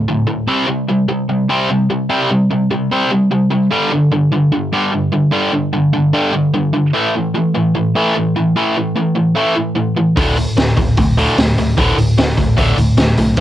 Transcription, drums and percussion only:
10.17 kick, open hi-hat
10.37 open hi-hat
10.57 snare, open hi-hat
10.77 kick, open hi-hat
10.97 kick, open hi-hat
11.18 open hi-hat
11.38 snare, open hi-hat
11.58 open hi-hat
11.78 kick, open hi-hat
11.98 open hi-hat
12.18 snare, open hi-hat
12.38 kick, open hi-hat
12.58 kick, open hi-hat
12.78 open hi-hat
12.97 snare, open hi-hat
13.17 open hi-hat
13.37 kick, open hi-hat

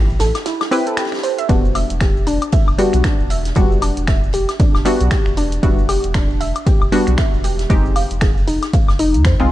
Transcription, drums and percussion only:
0.10 shaker
0.19 snare, open hi-hat, ride, shaker
0.35 snare, closed hi-hat, ride, high woodblock, shaker
0.46 snare, closed hi-hat, ride, shaker
0.61 snare, ride, high woodblock, shaker
0.71 open hi-hat, ride, shaker
0.87 closed hi-hat, shaker
0.97 finger snap, snare, closed hi-hat, ride, shaker
1.05 snare, ride
1.12 finger snap, snare, ride, shaker
1.18 snare, ride
1.23 open hi-hat, ride, shaker
1.38 closed hi-hat, shaker
1.49 kick, closed hi-hat, ride, shaker
1.65 shaker
1.75 open hi-hat, ride, high woodblock, shaker
1.90 closed hi-hat, shaker
2.01 finger snap, kick, snare, closed hi-hat, ride, shaker
2.17 shaker
2.26 open hi-hat, ride, shaker
2.42 closed hi-hat, high woodblock, shaker
2.52 kick, closed hi-hat, ride, shaker
2.68 high woodblock, shaker
2.79 open hi-hat, ride, shaker
2.93 finger snap, closed hi-hat, shaker
3.04 finger snap, kick, snare, closed hi-hat, ride, shaker
3.20 shaker
3.30 open hi-hat, ride, shaker
3.45 snare, closed hi-hat, shaker
3.55 kick, closed hi-hat, ride, shaker
3.72 shaker
3.82 open hi-hat, ride, high woodblock, shaker
3.97 closed hi-hat, shaker
4.07 finger snap, kick, snare, closed hi-hat, ride, shaker
4.24 shaker
4.33 open hi-hat, ride, shaker
4.49 snare, closed hi-hat, high woodblock, shaker
4.60 kick, closed hi-hat, ride, shaker
4.75 snare, high woodblock, shaker
4.85 open hi-hat, ride, shaker
5.01 closed hi-hat, shaker
5.11 finger snap, kick, snare, closed hi-hat, ride, shaker
5.26 finger snap, shaker
5.37 open hi-hat, ride, shaker
5.52 closed hi-hat, shaker
5.63 kick, closed hi-hat, ride, shaker
5.79 shaker
5.89 open hi-hat, ride, high woodblock, shaker
6.04 closed hi-hat, shaker
6.14 finger snap, kick, snare, closed hi-hat, ride, shaker
6.30 shaker
6.41 open hi-hat, ride, shaker
6.56 closed hi-hat, high woodblock, shaker
6.67 kick, closed hi-hat, ride, shaker
6.82 high woodblock, shaker
6.92 open hi-hat, ride, shaker
7.07 finger snap, closed hi-hat, shaker
7.18 finger snap, kick, snare, closed hi-hat, ride, shaker
7.34 shaker
7.44 open hi-hat, ride, shaker
7.59 snare, closed hi-hat, shaker
7.70 kick, closed hi-hat, ride, shaker
7.86 shaker
7.96 open hi-hat, ride, high woodblock, shaker
8.11 closed hi-hat, shaker
8.21 finger snap, kick, snare, closed hi-hat, ride, shaker
8.37 shaker
8.48 open hi-hat, ride, shaker
8.63 snare, closed hi-hat, high woodblock, shaker
8.73 kick, closed hi-hat, ride, shaker
8.88 snare, high woodblock, shaker
8.99 open hi-hat, ride, shaker
9.14 closed hi-hat, shaker
9.25 finger snap, kick, snare, closed hi-hat, ride, shaker
9.40 finger snap, shaker

